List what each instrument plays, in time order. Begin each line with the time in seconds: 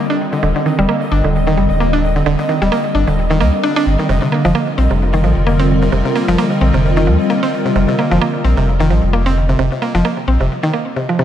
Already playing: analog synth pad D3 G3 C4 F4 A#4, synth texture D#5
0.10 synth arpeggio sound D4
0.33 synth arpeggio sound D3
0.43 sub bass D#1, synth arpeggio sound D3
0.56 synth arpeggio sound D3
0.66 synth arpeggio sound D#3
0.79 sub bass D#1, synth arpeggio sound G3
0.89 synth arpeggio sound A#3
1.12 sub bass G1, synth arpeggio sound D4
1.24 sub bass D#1, synth arpeggio sound D3
1.47 synth arpeggio sound D#3
1.57 sub bass G1, synth arpeggio sound G3
1.70 sub bass D#1
1.80 synth arpeggio sound A#3
1.93 synth arpeggio sound D4
2.16 synth arpeggio sound D3
2.26 sub bass D#1, synth arpeggio sound D3
2.39 synth arpeggio sound D3
2.49 synth arpeggio sound D#3
2.62 sub bass D#1, synth arpeggio sound G3
2.72 synth arpeggio sound A#3
2.95 sub bass G1, synth arpeggio sound D4
3.08 sub bass D#1, synth arpeggio sound D3
3.31 synth arpeggio sound D#3
3.40 sub bass D#2, synth arpeggio sound A#3
3.63 synth arpeggio sound D4
3.76 synth arpeggio sound D4
3.87 sub bass G1
3.99 synth arpeggio sound D#3
4.09 sub bass F1, synth arpeggio sound C3, analog synth pad D3
4.22 synth arpeggio sound C3
4.27 analog synth pad C4
4.32 analog synth pad G3, synth arpeggio sound A#3
4.45 sub bass F1, synth arpeggio sound F3, analog synth pad F4
4.55 synth arpeggio sound A#3
4.62 analog synth pad A#4
4.78 sub bass A#1, synth arpeggio sound C4
4.91 sub bass F1, synth arpeggio sound C3
5.14 synth arpeggio sound D#3
5.24 sub bass A#1, synth arpeggio sound F3
5.37 sub bass F1
5.47 synth arpeggio sound A#3
5.59 synth arpeggio sound C4
5.82 synth arpeggio sound C3
5.92 sub bass F1, synth arpeggio sound C3
6.05 synth arpeggio sound C3
6.16 synth arpeggio sound A#3
6.28 sub bass F1, synth arpeggio sound F3
6.38 synth arpeggio sound A#3
6.61 sub bass A#1, synth arpeggio sound C4
6.74 sub bass F1, synth arpeggio sound C3
6.97 synth arpeggio sound D#3
7.07 sub bass F2, synth arpeggio sound F3
7.30 synth arpeggio sound A#3
7.43 synth arpeggio sound C4
7.66 synth arpeggio sound C3
7.76 sub bass F1, synth arpeggio sound C3
7.89 synth arpeggio sound C3
7.99 synth arpeggio sound A#3
8.11 sub bass F1, synth arpeggio sound F3
8.22 synth arpeggio sound A#3
8.44 sub bass A#1, synth arpeggio sound C4
8.57 sub bass F1, synth arpeggio sound C3
8.80 synth arpeggio sound D#3
8.90 sub bass A#1, synth arpeggio sound F3
9.03 sub bass F1
9.13 synth arpeggio sound A#3
9.26 synth arpeggio sound C4
9.49 synth arpeggio sound C3
9.59 sub bass F1, synth arpeggio sound C3
9.72 synth arpeggio sound C3
9.82 synth arpeggio sound A#3
9.95 sub bass F1, synth arpeggio sound F3
10.05 synth arpeggio sound A#3
10.28 sub bass A#1, synth arpeggio sound C4
10.41 sub bass F1, synth arpeggio sound C3
10.63 synth arpeggio sound D#3
10.74 synth arpeggio sound A#3
10.96 synth arpeggio sound C3
11.09 synth arpeggio sound F3
11.19 synth arpeggio sound C3